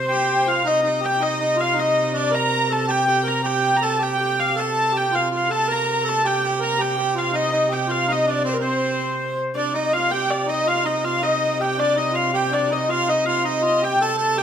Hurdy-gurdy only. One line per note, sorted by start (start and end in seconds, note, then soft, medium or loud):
0.00 0.43 C5 medium
0.10 0.48 G5 medium
0.48 0.67 F5 medium
0.67 0.87 D#5 medium
0.87 1.05 D#5 medium
1.05 1.23 G5 medium
1.23 1.61 D#5 medium
1.61 1.79 F5 medium
1.79 2.16 D#5 medium
2.16 2.35 D5 medium
2.35 2.72 A#5 loud
2.72 2.90 A5 medium
2.90 3.08 G5 medium
3.08 3.28 G5 medium
3.28 3.46 A#5 medium
3.46 3.78 G5 medium
3.77 3.83 A#5 medium
3.83 4.03 A5 medium
4.03 4.40 G5 medium
4.40 4.59 F5 medium
4.59 4.97 A5 medium
4.97 5.15 G5 medium
5.15 5.35 F5 medium
5.35 5.51 F5 medium
5.51 5.72 A5 medium
5.72 6.09 A#5 medium
6.09 6.26 A5 medium
6.26 6.46 G5 medium
6.46 6.64 G5 medium
6.64 6.81 A#5 medium
6.81 7.18 G5 medium
7.18 7.36 F5 medium
7.35 7.55 D#5 medium
7.55 7.72 D#5 medium
7.72 7.91 G5 medium
7.91 8.12 F5 medium
8.12 8.30 D#5 medium
8.30 8.49 D5 medium
8.49 8.54 C5 medium
8.53 8.62 A#4 medium
8.62 9.40 C5 medium
9.55 9.76 D5 medium
9.76 9.93 D#5 medium
9.93 10.11 F5 medium
10.11 10.30 G5 medium
10.30 10.49 D5 medium
10.49 10.68 D#5 medium
10.68 10.86 F5 medium
10.86 11.04 D#5 medium
11.04 11.23 F5 medium
11.23 11.61 D#5 medium
11.61 11.80 G5 medium
11.80 11.98 D5 medium
11.97 12.15 D#5 medium
12.15 12.35 F5 medium
12.35 12.53 G5 medium
12.53 12.72 D5 medium
12.72 12.91 D#5 medium
12.90 13.09 F5 medium
13.09 13.28 D#5 medium
13.26 13.45 F5 medium
13.45 13.84 D#5 medium
13.84 14.03 G5 medium
14.03 14.39 A5 loud
14.38 14.43 G5 medium